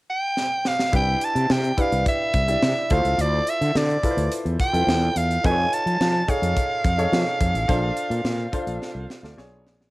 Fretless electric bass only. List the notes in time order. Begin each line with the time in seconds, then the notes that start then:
0.93 C2
1.35 C3
1.50 C3
1.92 C2
2.34 C2
2.62 C3
2.91 D2
3.05 C#2
3.18 D2
3.61 D3
3.75 D3
4.17 D2
4.45 E2
4.73 F2
4.87 E2
5.16 E2
5.44 F2
5.86 F3
6.00 F3
6.42 F2
6.85 F2
7.12 F3
7.41 F2
7.54 A1
7.69 A#1
8.10 A#2
8.24 A#2
8.67 A#1
8.95 C2
9.23 D2
9.38 B1
9.66 A#1